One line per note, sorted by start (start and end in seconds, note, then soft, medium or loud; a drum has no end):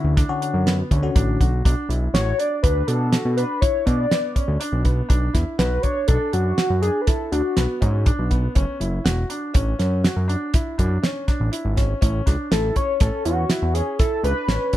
0.00 0.13 D3 medium
0.00 0.13 C#4 medium
0.00 0.12 E4 medium
0.00 0.13 F#4 medium
0.04 0.24 D2 medium
0.17 0.37 D4 medium
0.17 kick loud
0.17 snare soft
0.17 closed hi-hat medium
0.29 0.79 D3 medium
0.29 0.79 C#4 medium
0.29 0.79 F#4 loud
0.41 0.62 D4 medium
0.41 closed hi-hat medium
0.54 0.83 F#2 medium
0.66 0.86 B3 medium
0.66 snare medium
0.66 closed hi-hat medium
0.91 1.10 D2 medium
0.91 1.11 C#4 medium
0.91 kick medium
0.91 closed hi-hat medium
1.03 1.44 D3 medium
1.03 1.44 C#4 medium
1.03 1.45 F#4 medium
1.15 1.38 A1 medium
1.15 1.36 D4 medium
1.15 kick loud
1.15 closed hi-hat medium
1.40 1.62 B1 medium
1.40 1.60 F#4 medium
1.40 kick medium
1.40 closed hi-hat medium
1.65 1.75 B1 loud
1.65 1.85 D4 medium
1.65 kick loud
1.65 closed hi-hat medium
1.89 2.09 B1 medium
1.89 2.10 E4 medium
1.89 closed hi-hat soft
2.14 2.33 A1 loud
2.14 2.34 F#4 medium
2.14 2.41 C#5 loud
2.14 snare loud
2.14 closed hi-hat medium
2.38 2.59 D4 medium
2.38 2.62 D5 medium
2.38 closed hi-hat medium
2.63 2.83 D2 medium
2.63 2.83 D4 medium
2.63 2.89 B4 medium
2.63 kick medium
2.63 closed hi-hat medium
2.87 3.17 B2 medium
2.87 3.08 D4 medium
2.87 3.36 A4 medium
2.87 closed hi-hat medium
3.13 3.33 F#4 medium
3.13 snare medium
3.13 closed hi-hat medium
3.25 3.45 B2 medium
3.37 3.57 D4 medium
3.37 3.63 B4 medium
3.37 closed hi-hat medium
3.61 3.82 E4 medium
3.61 3.87 C#5 medium
3.61 kick loud
3.61 closed hi-hat medium
3.85 4.06 B2 loud
3.85 4.06 D4 medium
3.85 4.60 D5 loud
3.85 kick medium
3.85 closed hi-hat medium
4.11 4.31 B3 medium
4.11 snare medium
4.11 closed hi-hat medium
4.35 4.56 C#4 medium
4.35 kick medium
4.35 closed hi-hat medium
4.48 4.58 D2 medium
4.60 4.80 D4 medium
4.60 closed hi-hat medium
4.72 5.02 B1 medium
4.85 5.05 B3 medium
4.85 kick medium
4.85 closed hi-hat soft
5.09 5.29 B1 medium
5.09 5.29 D4 medium
5.09 kick medium
5.09 closed hi-hat medium
5.33 5.44 E2 medium
5.33 5.54 E4 medium
5.33 kick medium
5.33 snare soft
5.33 closed hi-hat medium
5.58 5.79 B1 medium
5.58 5.79 F#4 medium
5.58 5.84 B4 medium
5.58 snare loud
5.58 closed hi-hat medium
5.83 6.04 D4 medium
5.83 6.07 C#5 loud
5.83 kick medium
5.83 closed hi-hat medium
6.08 6.18 B1 medium
6.08 6.29 D4 medium
6.08 6.35 A4 medium
6.08 kick loud
6.08 closed hi-hat medium
6.33 6.53 F#2 medium
6.33 6.53 D4 medium
6.33 6.81 F#4 loud
6.33 closed hi-hat medium
6.58 6.78 F#4 medium
6.58 snare loud
6.58 closed hi-hat medium
6.70 6.90 F#2 medium
6.82 7.03 D4 medium
6.82 7.03 G#4 medium
6.82 closed hi-hat medium
7.01 7.08 B4 medium
7.07 7.28 E4 medium
7.07 7.33 A4 medium
7.07 kick medium
7.07 snare soft
7.07 closed hi-hat medium
7.32 7.42 D2 medium
7.32 7.53 D4 medium
7.32 8.06 F#4 medium
7.32 closed hi-hat medium
7.57 7.67 B1 medium
7.57 7.77 B3 medium
7.57 snare medium
7.57 closed hi-hat medium
7.81 8.11 G#2 loud
7.81 8.01 C#4 medium
7.81 kick medium
7.81 closed hi-hat medium
8.06 8.26 D4 medium
8.06 kick loud
8.06 closed hi-hat medium
8.19 8.48 B1 medium
8.30 8.51 B3 medium
8.30 kick medium
8.30 closed hi-hat soft
8.55 8.66 F#1 loud
8.55 8.76 C#4 medium
8.55 kick loud
8.55 closed hi-hat medium
8.80 9.00 F#1 medium
8.80 9.01 E4 medium
8.80 closed hi-hat medium
9.04 9.25 E1 loud
9.04 9.25 F#4 medium
9.04 snare loud
9.04 closed hi-hat medium
9.30 9.50 D4 medium
9.30 closed hi-hat medium
9.54 9.74 A1 medium
9.54 9.74 C#4 medium
9.54 kick loud
9.54 closed hi-hat medium
9.79 10.09 F#2 medium
9.79 9.99 C#4 medium
9.79 snare soft
9.79 closed hi-hat medium
10.04 10.24 F#4 medium
10.04 snare loud
10.04 closed hi-hat medium
10.16 10.36 F#2 medium
10.28 10.49 D4 medium
10.28 closed hi-hat medium
10.53 10.74 E4 medium
10.53 kick loud
10.53 snare soft
10.53 closed hi-hat medium
10.78 10.98 F#2 loud
10.78 10.98 D4 medium
10.78 kick medium
10.78 closed hi-hat medium
11.03 11.23 C#4 medium
11.03 snare medium
11.03 closed hi-hat medium
11.28 11.48 D4 medium
11.28 kick medium
11.28 snare soft
11.28 closed hi-hat medium
11.40 11.50 A1 medium
11.52 11.72 E4 medium
11.52 closed hi-hat medium
11.65 11.94 G#1 medium
11.76 11.97 C#4 medium
11.76 kick medium
11.76 snare soft
11.76 closed hi-hat medium
12.01 12.22 A1 medium
12.01 12.22 C#4 medium
12.01 kick medium
12.01 closed hi-hat medium
12.26 12.37 C#2 medium
12.26 12.47 D4 medium
12.26 kick medium
12.26 snare soft
12.26 closed hi-hat medium
12.51 12.71 A1 medium
12.51 12.71 E4 medium
12.51 12.78 A4 medium
12.51 snare loud
12.51 closed hi-hat medium
12.76 12.96 C#4 medium
12.76 13.01 C#5 loud
12.76 kick medium
12.76 closed hi-hat medium
13.00 13.11 A1 medium
13.00 13.21 C#4 medium
13.00 13.24 A4 medium
13.00 kick loud
13.00 snare soft
13.00 closed hi-hat medium
13.25 13.45 E2 medium
13.25 13.45 C#4 medium
13.25 13.75 F#4 loud
13.25 closed hi-hat medium
13.49 13.70 E4 medium
13.49 snare medium
13.49 closed hi-hat medium
13.62 13.82 E2 medium
13.74 13.95 C#4 medium
13.74 13.99 G#4 medium
13.74 closed hi-hat medium
13.99 14.19 E4 medium
13.99 14.22 A4 medium
13.99 kick medium
13.99 snare soft
13.99 closed hi-hat medium
14.23 14.33 C#2 loud
14.23 14.44 D4 medium
14.23 14.77 B4 medium
14.23 closed hi-hat medium
14.48 14.58 A1 medium
14.48 14.69 C#4 medium
14.48 snare loud
14.48 closed hi-hat medium
14.73 14.77 F#2 loud
14.73 14.77 D4 medium
14.73 kick medium
14.73 closed hi-hat medium